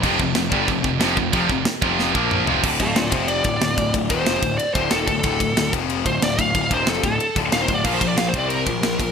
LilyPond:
<<
  \new Staff \with { instrumentName = "Lead electric guitar" } { \time 4/4 \key d \phrygian \tempo 4 = 184 r1 | r1 | r8 <a' f''>8 <f' d''>8 <g' c''>8 d''2 | r8 c''4. d''8 c''8 a'8 a'8~ |
a'4. r4 c''8 d''8 f''8~ | f''8 c''8 a'8 a'4 r8 \tuplet 3/2 { f''8 c''8 d''8 } | \tuplet 3/2 { f''8 c''8 d''8 f''8 c''8 d''8 } bes'2 | }
  \new Staff \with { instrumentName = "Distorted electric guitar" } { \clef bass \time 4/4 \key d \phrygian <f, c f>8 <f, c>8 <f, c>8 <g, d g>8 <f, c>8 <f, c>8 <f, c f>8 <f, c>8 | <f, c f>8 <f, c>8 r8 <f, c f>4 <bes, f bes>4 <f, c f>8 | r1 | r1 |
r1 | r1 | r1 | }
  \new Staff \with { instrumentName = "Distorted electric guitar" } { \clef bass \time 4/4 \key d \phrygian <f, c f>8 <f, c>8 <f, c>8 <g, d g>8 <f, c>8 <f, c>8 <f, c f>8 <f, c>8 | <f, c f>8 <f, c>8 r8 <f, c f>4 <bes, f bes>4 <f, c f>8 | r1 | r1 |
r1 | r1 | <bes, f bes>8 <bes, f>8 <bes, f>8 <c g c'>4 <bes, f>8 <bes, f>8 <bes, f>8 | }
  \new Staff \with { instrumentName = "Distorted electric guitar" } { \clef bass \time 4/4 \key d \phrygian <f, c f>8 <f, c>8 <f, c>8 <g, d g>8 <f, c>8 <f, c>8 <f, c f>8 <f, c>8 | <f, c f>8 <f, c>8 r8 <f, c f>4 <bes, f bes>4 <f, c f>8 | <d, a, d>8 <d, a,>8 <d, a,>8 <f, c f>4 <d, a,>8 <d, a,>8 <d, a,>8 | <d, a,>8 <ees, bes, ees>8 <f, c f>8 <d, a,>8 r8 <d, a, d>8 <ees, bes, ees>8 <d, a,>8 |
<d, a, d>8 <d, a,>8 <d, a,>8 <f, c f>4 <d, a,>8 <d, a,>8 <d, a,>8 | <d, a,>8 <ees, bes, ees>8 <f, c f>8 <d, a,>8 r8 <d, a, d>8 <ees, bes, ees>8 <d, a,>8 | <bes, f bes>8 <bes, f>8 <bes, f>8 <c g c'>4 <bes, f>8 <bes, f>8 <bes, f>8 | }
  \new Staff \with { instrumentName = "Picked electric bass" } { \clef bass \time 4/4 \key d \phrygian f,,8 f,,8 f,,8 g,,8 f,,8 f,,8 f,,8 f,,8 | f,,8 f,,8 r8 f,,4 bes,,4 f,,8 | d,,8 d,,8 d,,8 f,,4 d,,8 d,,8 d,,8 | d,,8 ees,,8 f,,8 d,,8 r8 d,,8 ees,,8 d,,8 |
d,,8 d,,8 d,,8 f,,4 d,,8 d,,8 d,,8 | d,,8 ees,,8 f,,8 d,,8 r8 d,,8 ees,,8 d,,8 | bes,,8 bes,,8 bes,,8 c,4 bes,,8 bes,,8 bes,,8 | }
  \new DrumStaff \with { instrumentName = "Drums" } \drummode { \time 4/4 <cymc bd>8 bd8 <cymc sn>8 bd8 <cymc bd>8 bd8 <cymc sn>8 bd8 | <cymc bd>8 bd8 <cymc sn>8 bd8 sn8 bd8 toml8 tomfh8 | <cymc bd>8 <bd cymr>8 <cymr sn>8 <bd cymr>8 cymr8 <bd cymr>8 <cymr sn>8 <bd cymr>8 | <bd cymr>8 <bd cymr>8 <cymr sn>8 <bd cymr>8 cymr8 <bd cymr>8 <cymr sn>8 <bd cymr>8 |
<bd cymr>8 <bd cymr>8 <cymr sn>8 <bd cymr>8 cymr8 <bd cymr>8 <cymr sn>8 <bd cymr>8 | <bd cymr>8 <bd cymr>8 <cymr sn>8 <bd cymr>8 cymr8 <bd cymr>8 <cymr sn>8 <bd cymr>8 | <cymc bd>8 <bd cymr>8 <cymr sn>8 <bd cymr>8 cymr8 <bd cymr>8 <cymr sn>8 <bd cymr>8 | }
>>